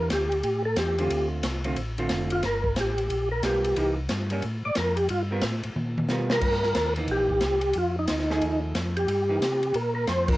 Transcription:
0.10 tonewheel organ D2 G4, snare, hi-hat pedal, ride
0.32 ride
0.43 tonewheel organ A2, ride
0.65 tonewheel organ A4
0.76 tonewheel organ E2 G4, snare, hi-hat pedal, ride
0.98 hollow-body jazz guitar D3 A3 C4 F4, ride
1.10 tonewheel organ D2, ride
1.43 tonewheel organ C2, snare, hi-hat pedal, ride
1.64 hollow-body jazz guitar D3 A3 C4 F4, ride
1.76 tonewheel organ A1, ride
1.98 hollow-body jazz guitar D3 A3 C4 F4, ride
2.09 tonewheel organ F1, snare, hi-hat pedal, ride
2.30 tonewheel organ F4, ride
2.43 tonewheel organ G1 A#4, snare, ride
2.64 kick
2.76 tonewheel organ A1, snare, hi-hat pedal, ride
2.80 tonewheel organ G4
2.98 ride
3.10 tonewheel organ A#1, ride
3.31 tonewheel organ A#4
3.42 tonewheel organ B1 G4, hollow-body jazz guitar G3 B3 F4 A#4, snare, hi-hat pedal, ride
3.64 ride
3.76 tonewheel organ C2, hollow-body jazz guitar E3 A#3 D#4, ride
4.09 tonewheel organ G2, snare, hi-hat pedal, ride
4.30 hollow-body jazz guitar G3 A#3 C#4, ride
4.42 tonewheel organ A2, ride
4.65 tonewheel organ A2 D5
4.75 tonewheel organ F2 A#4, snare, hi-hat pedal, ride
4.96 tonewheel organ G4, ride
5.09 tonewheel organ G2 F4, ride
5.31 hollow-body jazz guitar G3 B3 F4 A#4
5.41 tonewheel organ A2, snare, hi-hat pedal, ride
5.63 tonewheel organ A2, ride
5.76 tonewheel organ A#2, high tom
5.98 high tom
6.08 tonewheel organ B2, hollow-body jazz guitar G3 B3 F4 A#4, snare, hi-hat pedal
6.30 tonewheel organ A#4, snare
6.41 tonewheel organ G2, kick, crash
6.52 snare
6.63 snare
6.75 tonewheel organ D#2, snare, hi-hat pedal, ride
6.96 hollow-body jazz guitar E3 A#3 D#4, ride
7.08 tonewheel organ A#1 G4, ride
7.29 kick
7.41 tonewheel organ C2, snare, hi-hat pedal, ride
7.61 ride
7.73 tonewheel organ F2, ride
7.78 tonewheel organ F4
7.99 tonewheel organ D#4
8.07 tonewheel organ D2, snare, hi-hat pedal, ride
8.19 snare
8.30 hollow-body jazz guitar F3 A3 D#4 G#4, snare
8.41 tonewheel organ D#2, ride
8.75 tonewheel organ F2, snare, hi-hat pedal, ride
8.97 tonewheel organ G4, ride
9.07 tonewheel organ G2, ride
9.29 hollow-body jazz guitar E3 A#3 D#4
9.40 tonewheel organ C3, snare, hi-hat pedal, ride
9.63 ride
9.74 tonewheel organ A#2 A#4, ride
9.95 tonewheel organ A#4
10.07 tonewheel organ F2 C5, snare, hi-hat pedal, ride
10.28 hollow-body jazz guitar F3 A#3 D4, tonewheel organ A#4, kick, crash

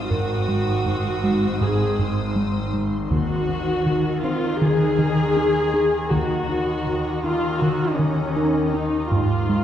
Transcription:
Already playing: viola section F4, violin section D#6 E6
0.10 double bass section G#1, synth drone G#1, cello section G#2, analog synth bass G#2, ambient pad D#4 C5 C6, viola section F#4, music box A#4
0.48 analog synth bass G#3
0.86 analog synth bass G#2
1.24 analog synth bass G#3
1.61 analog synth bass G#2, viola section G#4
1.99 analog synth bass G#2
2.36 analog synth bass G#3
2.73 analog synth bass G#3
3.10 double bass section D#2, synth drone D#2, cello section D#3, analog synth bass D#3, ambient pad D#4 D#5 A#5, viola section F#4
3.49 analog synth bass D#4
3.86 analog synth bass D#3
4.23 music box C4 C5, analog synth bass D#4, viola section F4
4.61 analog synth bass D#3, viola section G#4
4.99 analog synth bass D#3
5.37 analog synth bass D#4
5.74 analog synth bass D#4
6.11 double bass section D#2, synth drone D#2, analog synth bass D#3, cello section D#3, ambient pad D#4 D#5 A#5, viola section F#4
6.49 analog synth bass D#4
6.87 analog synth bass D#3
7.24 analog synth bass D#4, viola section F4
7.62 analog synth bass D#3, viola section F#4
7.98 analog synth bass D#3, viola section C#4
8.36 analog synth bass D#4, music box A#4
8.74 analog synth bass D#4, viola section D#4
9.10 synth drone G#1, double bass section G#1, cello section G#2, analog synth bass G#2, viola section F4, ambient pad C5 G#5, violin section C7
9.49 analog synth bass G#3

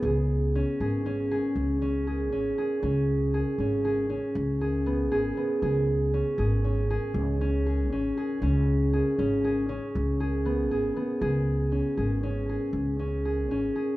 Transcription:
Already playing: harp B3 C#4
0.02 upright bass C#2, harp G#4
0.55 harp C#4
0.80 upright bass G#1, harp G#4
1.06 harp C#4
1.31 harp G#4
1.55 upright bass C#2
1.82 harp C#4
2.07 harp G#4
2.32 upright bass G#1, harp C#4
2.58 harp G#4
2.83 upright bass C#2, harp C#4
3.34 harp G#4
3.58 upright bass G#1, harp C#4
3.85 harp G#4
4.10 harp C#4
4.35 upright bass C#2
4.61 harp G#4
4.86 harp B3
5.11 upright bass G#1, harp G#4
5.37 harp B3
5.62 upright bass C#2, harp G#4
6.14 harp C#4
6.38 upright bass G#1, harp G#4
6.64 harp C#4
6.90 harp G#4
7.14 upright bass C#2
7.41 harp C#4
7.66 harp G#4
7.91 upright bass G#1, harp C#4
8.17 harp G#4
8.42 upright bass C#2, harp C#4
8.93 harp G#4
9.19 upright bass G#1, harp C#4
9.44 harp G#4
9.69 harp C#4
9.95 upright bass C#2
10.20 harp G#4
10.45 harp B3
10.71 upright bass G#1, harp G#4
10.96 harp B3
11.21 upright bass C#2, harp G#4
11.72 harp C#4
11.97 upright bass G#1, harp G#4
12.23 harp C#4
12.49 harp G#4
12.73 upright bass C#2
12.99 harp C#4
13.25 harp G#4
13.50 upright bass G#1, harp C#4
13.76 harp G#4

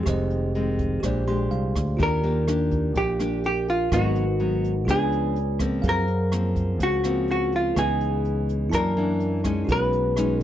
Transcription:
Already playing: nylon-string guitar D#3 G#3 C4, hollow-body jazz guitar A#4
0.03 fingered electric bass F1, nylon-string guitar F2, tine electric piano G4 G#4, kick, cross-stick, closed hi-hat
0.07 tine electric piano C5 D#5
0.30 closed hi-hat
0.55 nylon-string guitar D#3 G#3 C4, closed hi-hat
0.79 kick, closed hi-hat
1.00 fingered electric bass A#1, nylon-string guitar A#2 G#3, tine electric piano G4 C5, kick, cross-stick, closed hi-hat
1.04 nylon-string guitar D4 G4, tine electric piano D5
1.27 nylon-string guitar G#3 D4 G4, tine electric piano C6, closed hi-hat
1.51 fingered electric bass C2, tine electric piano F5, closed hi-hat
1.75 fingered electric bass D2, kick, cross-stick, closed hi-hat
1.97 fingered electric bass D#2, nylon-string guitar D#3 A#3 D4 G4, tine electric piano F4 G4 A#4, kick, closed hi-hat
2.03 hollow-body jazz guitar A#4, tine electric piano D5
2.23 nylon-string guitar A#3 D4 G4, closed hi-hat
2.48 nylon-string guitar A#3 D4 G4, cross-stick, closed hi-hat
2.71 kick, closed hi-hat
2.95 fingered electric bass A#1, nylon-string guitar A#2, hollow-body jazz guitar G4, kick, closed hi-hat
3.19 nylon-string guitar A#3 D4 G4, cross-stick, closed hi-hat
3.44 hollow-body jazz guitar G4, closed hi-hat
3.68 hollow-body jazz guitar F4, closed hi-hat
3.90 fingered electric bass G#1, nylon-string guitar G#2 F#3 B3 D#4, tine electric piano F#4 A#4, hollow-body jazz guitar F#4, kick, cross-stick, closed hi-hat
3.94 tine electric piano B4 D#5
4.15 closed hi-hat
4.39 nylon-string guitar F#3 B3 D#4, closed hi-hat
4.64 closed hi-hat
4.85 fingered electric bass C#2, nylon-string guitar C#3 F3 B3 D4, tine electric piano F4 G#4, kick, cross-stick, closed hi-hat
4.89 hollow-body jazz guitar G#4, tine electric piano B4 D5
5.12 closed hi-hat
5.36 closed hi-hat
5.59 nylon-string guitar F3 A#3 C4, kick, cross-stick, closed hi-hat
5.82 fingered electric bass F#2, nylon-string guitar F#2, tine electric piano G#4 F5, kick, closed hi-hat
5.86 tine electric piano A#4 C5, hollow-body jazz guitar A#4
6.07 closed hi-hat
6.32 nylon-string guitar F3 A#3 C4, cross-stick, closed hi-hat
6.56 kick, closed hi-hat
6.80 fingered electric bass C#2, nylon-string guitar C#3, hollow-body jazz guitar F#4, kick, closed hi-hat
7.04 nylon-string guitar F3 A#3 C4, cross-stick, closed hi-hat
7.28 hollow-body jazz guitar F#4, closed hi-hat
7.52 hollow-body jazz guitar F4, closed hi-hat
7.75 fingered electric bass C#2, nylon-string guitar C#3 E3 B3 D#4, tine electric piano G#4 B4, hollow-body jazz guitar G#4, kick, cross-stick, closed hi-hat
7.79 tine electric piano D#5
8.01 closed hi-hat
8.25 closed hi-hat
8.49 closed hi-hat
8.70 fingered electric bass F#2, nylon-string guitar F#2 E3, tine electric piano E4 A#4 A5, kick, cross-stick, closed hi-hat
8.74 nylon-string guitar A#3 D4, hollow-body jazz guitar A#4, tine electric piano D5
8.97 nylon-string guitar E3 A#3 D4, closed hi-hat
9.20 closed hi-hat
9.44 nylon-string guitar G#3 C#4 D#4, kick, cross-stick, closed hi-hat
9.65 fingered electric bass B1, tine electric piano D#4 F#4, kick, closed hi-hat
9.69 nylon-string guitar B2, tine electric piano G#4 C#5, hollow-body jazz guitar B4
9.93 closed hi-hat
10.16 nylon-string guitar G#3 C#4 D#4, cross-stick, closed hi-hat
10.37 hollow-body jazz guitar A#4

